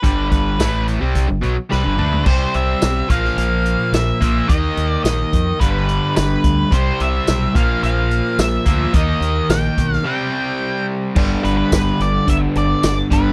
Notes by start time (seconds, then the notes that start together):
Already playing: B4
0.03 G1 G2 D3 G3, kick, closed hi-hat
0.30 B4, kick, closed hi-hat
0.59 A1 A2 E3 A3, kick, snare, closed hi-hat, tambourine
0.88 closed hi-hat
1.01 C2 C3 G3 C4
1.15 kick, closed hi-hat
1.29 G1 G2 D3
1.42 B1 B2 F#3, closed hi-hat
1.70 C2 C3 G3 B4, snare
1.84 G1 G2 D3
1.98 D2 D3 A3 D4, mid tom
2.12 floor tom
2.25 C2 C3 G3 C4 C5, kick, crash
2.54 C2 E5, closed hi-hat
2.82 B1, snare, closed hi-hat, tambourine
3.08 A#1 A#2 F3 A#3 F5, kick, closed hi-hat
3.25 snare
3.37 A#1 F5, closed hi-hat
3.66 closed hi-hat
3.92 A#1 E5, snare, closed hi-hat, tambourine
4.21 A#1 A#2 F3 A#3, kick, closed hi-hat
4.48 D#2 D#3 A#3 D#4 D#5, kick, closed hi-hat
4.77 D#2, closed hi-hat
4.91 D5
5.04 A#1 D#5, snare, closed hi-hat, tambourine
5.33 F2, kick, closed hi-hat
5.60 G1 G2 D3 G3 B4, kick, closed hi-hat
5.89 closed hi-hat
6.16 G1 B4, snare, closed hi-hat, tambourine
6.44 D2, kick, closed hi-hat
6.71 C2 C3 G3 C4 C5, kick, closed hi-hat
7.00 C2 E5, closed hi-hat
7.27 B1, snare, closed hi-hat, tambourine
7.55 A#1 A#2 F3 A#3 F5, kick, closed hi-hat
7.83 A#1 F5, closed hi-hat
8.11 closed hi-hat
8.38 A#1 E5, snare, closed hi-hat, tambourine
8.66 D2 A#2 F3 A#3, kick, closed hi-hat
8.93 D#2 D#3 A#3 D#4 D#5, kick, closed hi-hat
9.21 D#2, closed hi-hat
9.49 A#1 G5, snare, closed hi-hat, tambourine
9.78 B1, kick, closed hi-hat
9.93 snare
10.05 C3 G3 C4 G5
11.15 G1 G2 D3 G3 B3 D4, kick, crash
11.44 G1 B4, closed hi-hat
11.57 B4
11.72 G1, kick, snare, closed hi-hat, tambourine
12.00 G1 D5, closed hi-hat
12.27 G1 G2 D3 G3 B3 D4 E5, kick, closed hi-hat
12.55 G1 D5, closed hi-hat
12.83 G1 D5, snare, closed hi-hat, tambourine
13.10 G1 G2 D3 G3 B4, kick, closed hi-hat